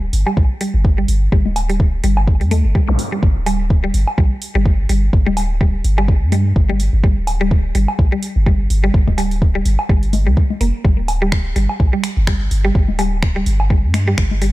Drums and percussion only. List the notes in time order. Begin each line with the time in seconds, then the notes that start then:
0.13 open hi-hat
0.27 low woodblock
0.37 kick
0.61 open hi-hat
0.85 kick
1.08 open hi-hat
1.32 kick
1.46 low conga
1.56 open hi-hat, low woodblock
1.70 open hi-hat
1.80 kick
2.04 open hi-hat
2.17 low woodblock
2.28 kick
2.41 open hi-hat
2.51 open hi-hat, low conga
2.75 kick
2.88 low conga
2.99 open hi-hat
3.23 kick
3.46 open hi-hat, low woodblock
3.70 kick
3.94 open hi-hat
4.08 low woodblock
4.18 kick
4.42 open hi-hat
4.66 kick
4.89 open hi-hat
5.13 kick
5.27 low conga
5.37 open hi-hat, low woodblock
5.61 kick
5.84 open hi-hat
5.98 low woodblock
6.08 kick
6.32 open hi-hat, low conga
6.56 kick
6.69 low conga
6.80 open hi-hat
7.04 kick
7.27 open hi-hat, low woodblock
7.51 kick
7.75 open hi-hat
7.88 low woodblock
7.99 kick
8.23 open hi-hat
8.46 kick
8.70 open hi-hat
8.94 kick
9.07 kick, low conga
9.18 open hi-hat, low woodblock
9.31 open hi-hat
9.42 kick
9.65 open hi-hat
9.79 low woodblock
9.89 kick
10.03 open hi-hat
10.13 open hi-hat, low conga
10.37 kick
10.50 low conga
10.61 open hi-hat
10.85 kick
11.08 open hi-hat, low woodblock
11.32 finger snap, kick
11.56 open hi-hat
11.69 low woodblock
11.80 kick
12.04 finger snap, open hi-hat
12.27 finger snap, kick
12.51 open hi-hat
12.75 kick
12.88 low conga
12.99 open hi-hat, low woodblock
13.23 finger snap, kick
13.46 open hi-hat
13.60 low woodblock
13.70 kick
13.94 finger snap, open hi-hat, low conga
14.18 finger snap, kick
14.31 low conga
14.42 open hi-hat